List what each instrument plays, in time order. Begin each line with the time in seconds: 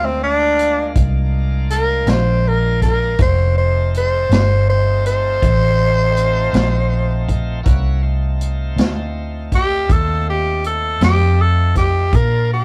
Already playing: fingered electric bass D2, tonewheel organ G#3 A#3 D4 F4
0.05 tenor saxophone C4
0.24 tenor saxophone D4
0.59 closed hi-hat
0.95 fingered electric bass C2, kick, closed hi-hat
1.70 tenor saxophone A#4, closed hi-hat
2.07 fingered electric bass A#1, tenor saxophone C5, snare, closed hi-hat
2.48 tenor saxophone A#4
2.82 tenor saxophone A#4, kick, snare, closed hi-hat
3.19 fingered electric bass F1, tonewheel organ A#3 C#4 E4 F#4, tenor saxophone C5, kick, closed hi-hat
3.54 tonewheel organ A3 C4 D#4 F4, tenor saxophone C5
3.94 tenor saxophone C5, closed hi-hat
4.29 fingered electric bass G1, snare, closed hi-hat
4.34 tenor saxophone C5
4.70 tenor saxophone C5
5.06 tenor saxophone C5, closed hi-hat
5.42 fingered electric bass A1, kick, closed hi-hat
6.17 closed hi-hat
6.53 fingered electric bass A#1, snare, closed hi-hat
7.29 kick, closed hi-hat
7.63 fingered electric bass C2, tonewheel organ A#3 C#4 E4 F#4, kick, closed hi-hat
8.02 tonewheel organ A3 C4 D#4 F4
8.41 closed hi-hat
8.76 fingered electric bass D2, snare, closed hi-hat
9.52 tenor saxophone G4, kick, closed hi-hat
9.89 fingered electric bass D#2, tenor saxophone A4, kick, closed hi-hat
10.30 tenor saxophone G4
10.64 tenor saxophone A4, closed hi-hat
11.01 fingered electric bass F2, tenor saxophone G4, snare, closed hi-hat
11.42 tenor saxophone A4
11.75 tenor saxophone G4, kick, snare, closed hi-hat
12.11 fingered electric bass A#2, tonewheel organ F3 A#3 D4 F4, kick, closed hi-hat
12.15 tenor saxophone A#4
12.53 tenor saxophone G4